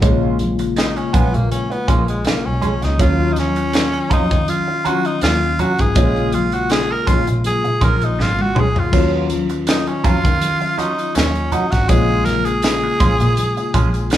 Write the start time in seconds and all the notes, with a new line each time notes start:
0.01 A#1 C#3 G#3 A#3 C#4 F4, kick, closed hi-hat, muted conga
0.23 muted conga
0.39 closed hi-hat, high conga
0.59 muted clean electric guitar stroke, closed hi-hat
0.76 D#4, muted clean electric guitar stroke, snare, closed hi-hat, muted conga
0.96 C#4, muted clean electric guitar stroke, closed hi-hat, muted conga
1.13 A#1 G#3 B3 C#4 F4, kick, closed hi-hat, high conga, low conga
1.33 A#2 A#3, muted clean electric guitar stroke, closed hi-hat, low conga
1.51 C#4, closed hi-hat, muted conga, high conga
1.70 B3, muted clean electric guitar stroke, closed hi-hat
1.88 A#1 G#3 A#3 C#4 F4, kick, closed hi-hat, high conga
2.08 G#3, muted clean electric guitar stroke, closed hi-hat
2.25 B1 A#3, muted clean electric guitar stroke, snare, closed hi-hat, high conga
2.46 B1 C#4
2.62 G#3 C#4 G#4, closed hi-hat, high conga, low conga
2.82 C#2 D#4, muted clean electric guitar stroke, snare, closed hi-hat
2.98 D#2 D#3 F#3 C#4 F4, kick, closed hi-hat
3.32 D#4, closed hi-hat
3.37 C#4, snare, high conga
3.56 muted clean electric guitar stroke, closed hi-hat
3.73 muted clean electric guitar stroke, snare, closed hi-hat, muted conga
3.93 muted clean electric guitar stroke, closed hi-hat, muted conga
4.10 F2 F#3 C#4 D#4 F4, kick, closed hi-hat, high conga, low conga
4.31 D#3, muted clean electric guitar stroke, kick, closed hi-hat, low conga
4.48 F4, closed hi-hat, muted conga, high conga
4.68 muted clean electric guitar stroke, muted conga
4.84 D#3 F#3 C#4 F4 F#4, closed hi-hat, high conga
5.05 D#4, muted clean electric guitar stroke, closed hi-hat
5.21 D#2 F4, muted clean electric guitar stroke, snare, closed hi-hat, high conga
5.43 muted conga
5.59 F#3 C#4 F#4, closed hi-hat, high conga, low conga
5.78 G#1 G#4, muted clean electric guitar stroke, kick, closed hi-hat
5.95 A#1 B2 G#3 A#3 C#4 F4, kick, closed hi-hat, muted conga
6.01 C#3
6.16 closed hi-hat, muted conga
6.32 F4, closed hi-hat, high conga
6.52 F#4, muted clean electric guitar stroke, closed hi-hat
6.70 G#4, muted clean electric guitar stroke, snare, closed hi-hat, muted conga
6.90 A#4, muted clean electric guitar stroke, muted conga
7.07 A#1 G#3 C#4 F4, kick, closed hi-hat, high conga, low conga
7.26 A#2, muted clean electric guitar stroke, closed hi-hat, low conga
7.44 G#4, closed hi-hat, muted conga, high conga
7.64 A#2, muted clean electric guitar stroke, closed hi-hat, muted conga
7.81 A#1 G#3 C#4 F4 A#4, kick, closed hi-hat, high conga
8.01 A#1 D#4, muted clean electric guitar stroke, closed hi-hat
8.19 G#1 F4, muted clean electric guitar stroke, snare, muted conga, high conga
8.39 F#4, high tom, muted conga
8.55 C#2 G#3 C#4 G#4, mid tom, high conga, low conga
8.60 G#4
8.76 F4, muted clean electric guitar stroke, floor tom
8.91 D#2 D#3 F#3 C#4 F4, kick, crash, tambourine
9.14 muted conga
9.30 closed hi-hat, tambourine, high conga
9.49 muted clean electric guitar stroke, closed hi-hat, tambourine
9.67 D#4, muted clean electric guitar stroke, snare, closed hi-hat, tambourine, muted conga
9.87 C#4, muted clean electric guitar stroke, closed hi-hat, muted conga
10.04 F2 F#3 C#4 F4, kick, closed hi-hat, tambourine, high conga, low conga
10.24 D#3, muted clean electric guitar stroke, kick, closed hi-hat, tambourine, low conga
10.41 closed hi-hat, tambourine, muted conga, high conga
10.61 muted clean electric guitar stroke, tambourine, muted conga
10.78 F#3 C#4 D#4 F4, closed hi-hat, tambourine, high conga
10.98 muted clean electric guitar stroke, closed hi-hat, tambourine
11.15 D#2 C#4, muted clean electric guitar stroke, snare, closed hi-hat, tambourine, high conga
11.35 closed hi-hat, muted conga
11.52 F#3 C#4 D#4 F#4, closed hi-hat, tambourine, high conga, low conga
11.71 G#1 F#4, muted clean electric guitar stroke, kick, snare, closed hi-hat
11.88 A#1 C#3 G#3 A#3 C#4 F4 G#4, kick, closed hi-hat, tambourine, muted conga
12.25 A#4, snare, closed hi-hat, tambourine, high conga
12.45 G#4, muted clean electric guitar stroke, closed hi-hat, tambourine
12.62 muted clean electric guitar stroke, snare, closed hi-hat, tambourine, muted conga
12.83 muted clean electric guitar stroke, muted conga
13.00 A#1 G#3 C#4 F4, kick, closed hi-hat, tambourine, high conga, low conga
13.20 A#2, muted clean electric guitar stroke, closed hi-hat, tambourine, low conga
13.37 closed hi-hat, tambourine, muted conga, high conga
13.57 muted clean electric guitar stroke, closed hi-hat, tambourine, muted conga
13.74 A#1 G#3 C#4 F4, kick, closed hi-hat, tambourine, high conga
13.94 muted clean electric guitar stroke, closed hi-hat, tambourine
14.10 B1, muted clean electric guitar stroke, snare, closed hi-hat, tambourine, high conga